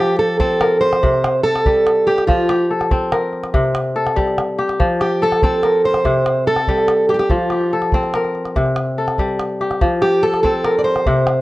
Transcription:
0.00 1.08 F3 medium
0.00 0.19 G4 medium
0.00 1.38 G4 medium
0.19 0.38 A4 medium
0.40 2.20 C4 medium
0.40 0.80 A4 medium
0.40 calabash thump medium
0.61 1.51 A#4 medium
0.61 calabash click medium
0.81 1.43 C5 loud
0.81 calabash click soft
0.93 calabash click medium
1.03 2.33 C3 medium
1.03 calabash thump medium
1.14 calabash click soft
1.24 calabash click medium
1.43 2.09 A4 loud
1.43 2.70 A4 medium
1.43 calabash click soft
1.55 calabash click medium
1.66 2.33 G3 medium
1.66 calabash thump medium
1.76 calabash click soft
1.87 calabash click medium
2.07 2.27 G4 medium
2.07 2.49 G4 medium
2.07 calabash click soft
2.18 calabash click soft
2.27 3.59 F3 medium
2.27 2.72 F4 medium
2.27 calabash thump medium
2.27 calabash click soft
2.49 3.91 G4 medium
2.49 calabash click medium
2.70 3.95 A4 medium
2.81 calabash click soft
2.91 4.71 C4 medium
2.91 calabash thump medium
3.12 4.02 A#4 medium
3.12 calabash click medium
3.33 calabash click soft
3.44 calabash click soft
3.54 4.85 C3 medium
3.54 calabash thump medium
3.65 calabash click soft
3.75 calabash click medium
3.96 5.21 A4 medium
3.96 calabash click soft
4.07 calabash click soft
4.16 4.85 G3 medium
4.16 calabash thump medium
4.27 calabash click soft
4.38 calabash click medium
4.58 5.00 G4 medium
4.58 calabash click soft
4.69 calabash click soft
4.80 6.10 F3 medium
4.80 calabash thump medium
4.80 calabash click soft
5.00 6.42 G4 medium
5.00 5.22 G4 medium
5.00 calabash click medium
5.22 6.47 A4 medium
5.22 5.43 A4 medium
5.32 calabash click soft
5.42 7.23 C4 medium
5.42 5.85 A4 medium
5.42 calabash thump medium
5.63 6.53 A#4 medium
5.63 calabash click medium
5.84 6.47 C5 medium
5.84 calabash click soft
5.94 calabash click soft
6.05 7.36 C3 medium
6.05 calabash thump soft
6.26 calabash click medium
6.47 7.09 A4 medium
6.47 7.73 A4 medium
6.47 calabash click soft
6.56 calabash click soft
6.67 7.36 G3 medium
6.67 calabash thump medium
6.78 calabash click soft
6.88 calabash click medium
7.09 7.13 G4 medium
7.09 7.52 G4 medium
7.09 calabash click soft
7.14 7.18 G4 medium
7.19 7.30 G4 medium
7.19 calabash click soft
7.30 8.61 F3 medium
7.30 7.74 F4 medium
7.30 calabash thump medium
7.30 calabash click soft
7.50 8.93 G4 soft
7.50 calabash click medium
7.61 calabash click soft
7.71 8.98 A4 medium
7.71 calabash click soft
7.82 calabash click soft
7.92 9.74 C4 medium
7.92 calabash thump medium
8.04 calabash click soft
8.14 9.04 A#4 medium
8.14 calabash click medium
8.25 calabash click soft
8.35 calabash click soft
8.45 calabash click soft
8.56 9.87 C3 medium
8.56 calabash thump medium
8.66 calabash click soft
8.76 calabash click medium
8.98 10.23 A4 medium
9.08 calabash click soft
9.18 9.87 G3 medium
9.18 calabash thump soft
9.18 calabash click soft
9.40 calabash click medium
9.61 10.03 G4 medium
9.61 calabash click soft
9.71 calabash click soft
9.82 11.12 F3 medium
9.82 calabash thump medium
9.82 calabash click soft
10.02 10.24 G4 medium
10.02 11.41 G4 soft
10.02 calabash click medium
10.23 10.42 A4 medium
10.23 11.41 A4 medium
10.34 calabash click soft
10.43 11.41 C4 medium
10.43 10.76 A4 medium
10.43 calabash thump medium
10.65 11.41 A#4 medium
10.65 calabash click medium
10.79 10.84 D5 medium
10.84 11.41 C5 medium
10.84 calabash click soft
10.96 calabash click soft
11.06 11.41 C3 medium
11.06 calabash thump medium
11.17 calabash click soft
11.27 calabash click medium

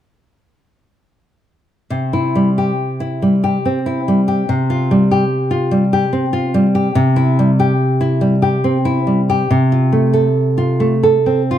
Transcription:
1.90 4.45 C3 soft
2.13 2.49 E4 soft
2.35 2.71 G3 soft
2.58 3.26 G4 soft
3.00 3.34 E4 soft
3.22 3.56 G3 soft
3.44 3.78 G4 soft
3.65 3.99 C4 soft
3.86 4.20 E4 soft
4.08 4.41 G3 soft
4.28 4.49 G4 soft
4.49 6.91 C3 soft
4.70 5.03 F4 soft
4.91 5.23 G3 soft
5.11 5.76 G4 soft
5.51 5.84 F4 soft
5.71 6.04 G3 soft
5.93 6.25 G4 soft
6.13 6.45 C4 soft
6.33 6.66 F4 soft
6.54 6.87 G3 soft
6.75 6.95 G4 soft
6.95 9.46 C3 soft
7.16 7.50 E4 soft
7.39 7.72 G3 soft
7.60 8.26 G4 soft
8.01 8.34 E4 soft
8.21 8.55 G3 soft
8.42 8.77 G4 soft
8.64 8.99 C4 soft
8.85 9.20 E4 soft
9.07 9.41 G3 soft
9.30 9.50 G4 soft
9.51 11.58 C3 soft
9.72 10.06 F4 soft
9.92 10.27 A3 soft
10.13 10.84 A4 soft
10.58 10.94 F4 soft
10.80 11.17 A3 soft
11.03 11.41 A4 soft
11.26 11.58 C4 soft
11.51 11.58 F4 soft

